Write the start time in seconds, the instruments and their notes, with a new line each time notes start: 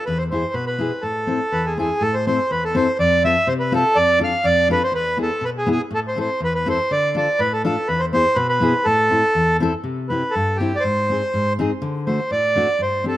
0.06 steel-string acoustic guitar E2, accordion B4
0.18 accordion C5
0.31 steel-string acoustic guitar B3 E4 G#4, accordion C5
0.54 steel-string acoustic guitar B2, accordion B4
0.67 accordion B4
0.79 steel-string acoustic guitar B3 E4 G#4
1.02 steel-string acoustic guitar A2, accordion A4
1.27 steel-string acoustic guitar C4 E4 A4
1.52 steel-string acoustic guitar E2, accordion B4
1.66 accordion G#4
1.78 steel-string acoustic guitar C4 E4 A4, accordion G#4
2.01 steel-string acoustic guitar A2, accordion A4
2.14 accordion C5
2.27 steel-string acoustic guitar C4 E4 A4, accordion C5
2.51 steel-string acoustic guitar E2, accordion B4
2.65 accordion A4
2.75 steel-string acoustic guitar C4 E4 A4, accordion C5
2.99 steel-string acoustic guitar F2, accordion D5
3.24 steel-string acoustic guitar C4 F4 A4, accordion E5
3.47 steel-string acoustic guitar C3, accordion C5
3.60 accordion B4
3.72 steel-string acoustic guitar C4 F4 A4, accordion A4
3.96 steel-string acoustic guitar F2, accordion D5
4.19 steel-string acoustic guitar D4 F4 A4
4.24 accordion F5
4.44 steel-string acoustic guitar F2, accordion D5
4.69 steel-string acoustic guitar D4 F4 A4, accordion B4
4.84 accordion C5
4.92 steel-string acoustic guitar E2, accordion B4
5.17 steel-string acoustic guitar B3 E4 G#4
5.22 accordion A4
5.41 steel-string acoustic guitar B2, accordion B4
5.58 accordion G#4
5.67 steel-string acoustic guitar B3 E4 G#4
5.72 accordion G#4
5.91 steel-string acoustic guitar A2
5.95 accordion A4
6.08 accordion C5
6.16 steel-string acoustic guitar C4 E4 A4
6.20 accordion C5
6.41 steel-string acoustic guitar E2, accordion B4
6.55 accordion B4
6.66 steel-string acoustic guitar C4 E4 A4, accordion C5
6.91 steel-string acoustic guitar D3, accordion D5
7.15 steel-string acoustic guitar D4 F4 A4, accordion D5
7.39 steel-string acoustic guitar A2, accordion B4
7.53 accordion A4
7.64 steel-string acoustic guitar D4 F4 A4, accordion A4
7.88 steel-string acoustic guitar E2, accordion B4
8.00 accordion C5
8.13 steel-string acoustic guitar B3 E4 G#4, accordion C5
8.35 steel-string acoustic guitar B2, accordion B4
8.49 accordion B4
8.60 steel-string acoustic guitar B3 E4 G#4
8.85 steel-string acoustic guitar A2, accordion A4
9.10 steel-string acoustic guitar C4 E4 A4
9.35 steel-string acoustic guitar E2
9.60 steel-string acoustic guitar C4 E4 A4
9.84 steel-string acoustic guitar C3
10.09 steel-string acoustic guitar C4 E4 G4, accordion B4
10.31 accordion A4
10.35 steel-string acoustic guitar G2
10.56 accordion G4
10.60 steel-string acoustic guitar C4 E4 G4
10.76 accordion D5
10.80 steel-string acoustic guitar G#2, accordion C5
11.10 steel-string acoustic guitar C4 D#4 G#4
11.34 steel-string acoustic guitar G#2
11.59 steel-string acoustic guitar C4 D#4 G#4
11.82 steel-string acoustic guitar D3
12.06 steel-string acoustic guitar A3 D4 F#4, accordion C5
12.31 steel-string acoustic guitar A2, accordion D5
12.56 steel-string acoustic guitar A3 D4 F#4
12.79 steel-string acoustic guitar G2, accordion C5
13.04 steel-string acoustic guitar C4 D4 G4
13.08 accordion A4